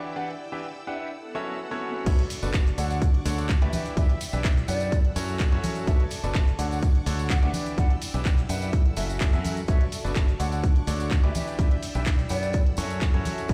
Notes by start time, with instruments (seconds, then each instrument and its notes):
Already playing: grand piano E3 D4 E4 G4 B4 D5, ambient pad D4 E4, string machine D5 G5 E6
0.16 grand piano E3 D4 E4 G4 B4 D5, ambient pad D5, flute F#5
0.46 ambient pad G5
0.52 grand piano E3 D4 E4 G4 B4 E5
0.87 grand piano D4 E4 G4 B4 F#5, flute E5
1.00 flute E5
1.11 string machine A4 F#5, swell
1.35 grand piano F#3 C#4 E4 F#4 A4 C#5, flute E5
1.47 flute E5
1.54 ambient pad A4 F#5
1.71 grand piano F#3 C#4 E4 F#4 A4 C#5
2.06 fingered electric bass B1, grand piano B2 D4 F#4 A4 B4 C#5, ambient pad D4, string machine A4 D5 C#6, flute E5, kick, closed hi-hat, crash, tambourine, shaker
2.19 closed hi-hat
2.30 open hi-hat, tambourine, shaker
2.39 fingered electric bass F#1, grand piano B2 D4 F#4 A4 B4 D5, ambient pad A5, closed hi-hat, tambourine
2.43 shaker
2.54 kick, clap, closed hi-hat, tambourine, shaker
2.67 closed hi-hat, shaker
2.78 fingered electric bass D2, grand piano D3 D4 F#4 A4 C#5 D5, flute F#5, string machine F#5 C#6 D6, open hi-hat, tambourine, shaker
2.90 flute F#5, closed hi-hat, tambourine, shaker
3.02 kick, closed hi-hat, tambourine, shaker
3.14 closed hi-hat
3.21 ambient pad F#5
3.25 fingered electric bass D2, grand piano D3 D4 F#4 A4 C#5 D5, open hi-hat, tambourine, shaker
3.38 closed hi-hat, tambourine, shaker
3.49 kick, clap, closed hi-hat, shaker
3.62 fingered electric bass D2, grand piano E3 D4 E4 G4 B4 D5, flute E5, closed hi-hat
3.73 ambient pad E4, string machine D5 G5 E6, flute E5, open hi-hat, tambourine, high conga, shaker
3.85 closed hi-hat, tambourine, shaker
3.97 fingered electric bass E2, grand piano E3 D4 E4 G4 B4 D5, flute E5, kick, closed hi-hat, tambourine, shaker
4.03 ambient pad D5
4.10 closed hi-hat
4.21 open hi-hat, tambourine, shaker
4.27 ambient pad G5
4.33 fingered electric bass B1, grand piano E3 D4 E4 G4 B4 E5, closed hi-hat, tambourine, shaker
4.44 kick, clap, closed hi-hat, tambourine, shaker
4.57 closed hi-hat, shaker
4.68 fingered electric bass F#2, grand piano D4 E4 G4 B4 F#5, flute D5, open hi-hat, tambourine, shaker
4.80 closed hi-hat, tambourine, shaker
4.92 ambient pad F#4, string machine A4 F#5 E6, kick, closed hi-hat, tambourine, shaker
5.05 closed hi-hat
5.14 fingered electric bass F#2, grand piano F#3 C#4 E4 F#4 A4 C#5, ambient pad E5, open hi-hat, tambourine, shaker
5.28 closed hi-hat, tambourine, shaker
5.35 ambient pad A5
5.39 kick, clap, closed hi-hat, tambourine, shaker
5.52 fingered electric bass F#2, grand piano F#3 C#4 E4 F#4 A4 C#5, closed hi-hat
5.64 open hi-hat, tambourine, high conga, shaker
5.75 closed hi-hat, tambourine, shaker
5.87 fingered electric bass B1, grand piano B2 D4 F#4 A4 B4 C#5, ambient pad D4, string machine D5 C#6, flute E5, kick, closed hi-hat, tambourine, shaker
6.00 closed hi-hat
6.11 open hi-hat, tambourine, shaker
6.24 fingered electric bass F#1, grand piano B2 D4 F#4 A4 B4 D5, closed hi-hat, tambourine, shaker
6.35 kick, clap, closed hi-hat, tambourine, shaker
6.47 closed hi-hat, shaker
6.59 fingered electric bass D2, grand piano D3 D4 F#4 A4 C#5 D5, flute F#5, string machine F#5 C#6 D6, open hi-hat, tambourine, shaker
6.71 flute F#5, closed hi-hat, tambourine, shaker
6.83 kick, closed hi-hat, tambourine, shaker
6.95 closed hi-hat
7.02 ambient pad F#5
7.06 fingered electric bass D2, grand piano D3 D4 F#4 A4 C#5 D5, open hi-hat, tambourine, shaker
7.19 closed hi-hat, tambourine, shaker
7.30 flute F#5, kick, clap, closed hi-hat, tambourine, shaker
7.43 fingered electric bass D2, grand piano E3 D4 E4 G4 B4 D5, flute F#5, closed hi-hat
7.54 ambient pad E4, string machine D5 G5 E6, open hi-hat, tambourine, high conga, shaker
7.66 tambourine, shaker
7.78 fingered electric bass E2, grand piano E3 D4 E4 G4 B4 D5, flute F#5, kick, closed hi-hat, tambourine, shaker
7.90 closed hi-hat
8.02 ambient pad D5, open hi-hat, tambourine, shaker
8.08 ambient pad G5
8.14 fingered electric bass B1, grand piano E3 D4 E4 G4 B4 E5, closed hi-hat, tambourine, shaker
8.25 kick, clap, closed hi-hat, tambourine, shaker
8.38 closed hi-hat, shaker
8.49 fingered electric bass F#2, grand piano D4 E4 G4 B4 F#5, flute E5, open hi-hat, tambourine, shaker
8.62 flute E5, closed hi-hat, tambourine, shaker
8.73 ambient pad F#4, string machine A4 F#5, kick, closed hi-hat, tambourine, shaker
8.86 closed hi-hat
8.97 fingered electric bass F#1, grand piano F#3 C#4 E4 F#4 A4 E5, flute E5, open hi-hat, tambourine, shaker
9.09 flute E5, closed hi-hat, tambourine, shaker
9.16 ambient pad E5 A5
9.21 kick, clap, closed hi-hat, tambourine, shaker
9.33 fingered electric bass F#2, grand piano F#3 C#4 E4 F#4 A4 E5, closed hi-hat, shaker
9.45 open hi-hat, tambourine, high conga, shaker
9.57 tambourine, shaker
9.68 fingered electric bass B1, grand piano B2 D4 F#4 A4 B4 C#5, ambient pad D4, string machine D5 C#6, flute E5, kick, closed hi-hat, tambourine, shaker
9.81 closed hi-hat
9.92 open hi-hat, tambourine, shaker
10.05 fingered electric bass F#1, grand piano B2 D4 F#4 A4 B4 D5, closed hi-hat, tambourine, shaker
10.16 kick, clap, closed hi-hat, tambourine, shaker
10.28 closed hi-hat, shaker
10.40 fingered electric bass D2, grand piano D3 D4 F#4 A4 C#5 D5, string machine F#5 C#6 D6, flute F#5, open hi-hat, tambourine, shaker
10.52 flute F#5, closed hi-hat, tambourine, shaker
10.64 kick, closed hi-hat, tambourine, shaker
10.76 closed hi-hat
10.83 ambient pad F#5
10.87 fingered electric bass D2, grand piano D3 D4 F#4 A4 C#5 D5, open hi-hat, tambourine, shaker
11.00 closed hi-hat, tambourine, shaker
11.11 kick, clap, closed hi-hat, tambourine, shaker
11.24 fingered electric bass D2, grand piano E3 D4 E4 G4 B4 D5, flute E5, closed hi-hat
11.35 ambient pad E4, string machine D5 G5 E6, flute E5, open hi-hat, tambourine, high conga, shaker
11.47 closed hi-hat, tambourine, shaker
11.59 fingered electric bass E2, grand piano E3 D4 E4 G4 B4 D5, flute E5, kick, closed hi-hat, tambourine, shaker
11.71 closed hi-hat
11.83 ambient pad D5, open hi-hat, tambourine, shaker
11.89 ambient pad G5
11.95 fingered electric bass B1, grand piano E3 D4 E4 G4 B4 E5, closed hi-hat, tambourine, shaker
12.06 kick, clap, closed hi-hat, tambourine, shaker
12.19 closed hi-hat, shaker
12.29 fingered electric bass F#2, grand piano D4 E4 G4 B4 F#5, flute D5, open hi-hat, tambourine, shaker
12.43 closed hi-hat, tambourine, shaker
12.53 ambient pad F#4, string machine A4 F#5, kick, closed hi-hat, tambourine, shaker
12.67 closed hi-hat
12.77 fingered electric bass F#2, grand piano F#3 C#4 E4 F#4 A4 C#5, open hi-hat, tambourine, shaker
12.90 closed hi-hat, tambourine, shaker
12.97 ambient pad E5 A5
13.01 kick, clap, closed hi-hat, tambourine, shaker
13.14 fingered electric bass F#2, grand piano F#3 C#4 E4 F#4 A4 C#5, closed hi-hat
13.25 open hi-hat, tambourine, high conga, shaker
13.38 closed hi-hat, tambourine, shaker
13.48 fingered electric bass B1, grand piano B2 D4 F#4 A4 B4 C#5, ambient pad D4, string machine D5 C#6, flute E5, kick, closed hi-hat, tambourine, shaker